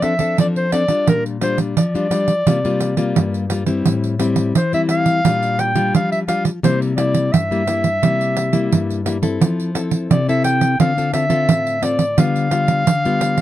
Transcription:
Already playing: nylon-string guitar F3
0.02 nylon-string guitar C4 D4 A4, clarinet E5, pandeiro
0.19 nylon-string guitar C4 D4 A4, pandeiro
0.38 nylon-string guitar F3, clarinet D5, pandeiro
0.56 clarinet C5, pandeiro
0.72 nylon-string guitar C4 D4 A4, clarinet D5, pandeiro
0.88 nylon-string guitar G3 D4 F4, pandeiro
1.07 nylon-string guitar A#2, clarinet A#4, pandeiro
1.26 pandeiro
1.41 nylon-string guitar G3 D4 F4, clarinet C5, pandeiro
1.58 pandeiro
1.77 nylon-string guitar F3, clarinet D5, pandeiro
1.95 nylon-string guitar G3 D4 F4, pandeiro
2.11 nylon-string guitar G3 D4 F4, pandeiro
2.28 pandeiro
2.47 nylon-string guitar C3 G3 A#3 F4, pandeiro
2.65 nylon-string guitar G3 A#3 F4, pandeiro
2.81 pandeiro
2.97 nylon-string guitar G3 A#3 F4, pandeiro
3.16 nylon-string guitar G2, pandeiro
3.34 pandeiro
3.50 nylon-string guitar G3 A#3 F4, pandeiro
3.66 nylon-string guitar G3 C4 E4, pandeiro
3.86 nylon-string guitar A2, pandeiro
4.04 pandeiro
4.19 nylon-string guitar G3 C4 E4, pandeiro
4.36 pandeiro
4.55 nylon-string guitar E3, clarinet C5, pandeiro
4.73 nylon-string guitar G3 C4 E4, clarinet E5, pandeiro
4.89 clarinet F5, pandeiro
5.06 pandeiro
5.25 nylon-string guitar A#2 G3 D4 F4, pandeiro
5.43 pandeiro
5.59 clarinet G5, pandeiro
5.75 nylon-string guitar G3 D4 F4, pandeiro
5.94 nylon-string guitar F3, clarinet F5, pandeiro
6.12 clarinet E5, pandeiro
6.28 nylon-string guitar G3 D4 F4, clarinet F5, pandeiro
6.45 pandeiro
6.63 nylon-string guitar C3 G3 A#3 E4, clarinet C5, pandeiro
6.82 pandeiro
6.97 nylon-string guitar G3 A#3 E4, clarinet D5, pandeiro
7.14 pandeiro
7.32 nylon-string guitar G2, clarinet E5, pandeiro
7.51 nylon-string guitar G3 A#3 E4, pandeiro
7.67 nylon-string guitar G3 A#3 E4, pandeiro
7.84 pandeiro
8.02 nylon-string guitar C3 G3 A#3 E4, pandeiro
8.21 pandeiro
8.37 pandeiro
8.53 nylon-string guitar G3 A#3 E4, pandeiro
8.72 nylon-string guitar G2, pandeiro
8.90 pandeiro
9.06 nylon-string guitar G3 A#3 E4, pandeiro
9.22 nylon-string guitar C4 E4 A4, pandeiro
9.41 nylon-string guitar F3, pandeiro
9.60 pandeiro
9.75 nylon-string guitar C4 E4 A4, pandeiro
9.91 pandeiro
10.11 nylon-string guitar C3, clarinet D5, pandeiro
10.28 nylon-string guitar C4 E4 A4, clarinet E5, pandeiro
10.44 clarinet G5, pandeiro
10.61 pandeiro
10.79 nylon-string guitar D3 C4 F4 A4, clarinet F5, pandeiro
10.98 nylon-string guitar C4 F4 A4, pandeiro
11.13 nylon-string guitar C4 F4 A4, clarinet E5, pandeiro
11.29 nylon-string guitar C4 F4 A4, pandeiro
11.49 nylon-string guitar A2, pandeiro
11.67 pandeiro
11.82 nylon-string guitar C4 F4 A4, clarinet D5, pandeiro
11.99 pandeiro
12.18 nylon-string guitar D3 G3 B3 F4, clarinet F5, pandeiro
12.36 pandeiro
12.51 nylon-string guitar G3 B3 F4, pandeiro
12.68 pandeiro
12.87 nylon-string guitar D3, pandeiro
13.05 nylon-string guitar G3 B3 F4, pandeiro
13.21 pandeiro
13.38 pandeiro

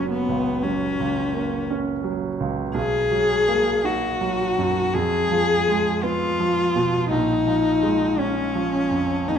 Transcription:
Already playing: grand piano F#1 F#3 A#3 C#4
0.10 cello B3
0.29 grand piano C#2
0.63 grand piano F#3, cello C#4
1.00 grand piano C#2
1.34 grand piano A#3
1.71 grand piano C#4
2.04 grand piano F#3
2.40 grand piano C#2
2.74 grand piano B1, cello G#4
3.11 grand piano F#3
3.48 grand piano A#3
3.84 grand piano D#4, cello F#4
4.21 grand piano F#3
4.59 grand piano F#2
4.94 grand piano F2, cello G#4
5.32 grand piano F3
5.68 grand piano G#3
6.03 grand piano B3, cello F4
6.40 grand piano F3
6.76 grand piano B2
7.11 grand piano A#1, cello D#4
7.47 grand piano F3
7.83 grand piano G#3
8.19 grand piano C#4, cello C#4
8.55 grand piano F3
8.91 grand piano F2
9.27 grand piano D#2, cello D#4

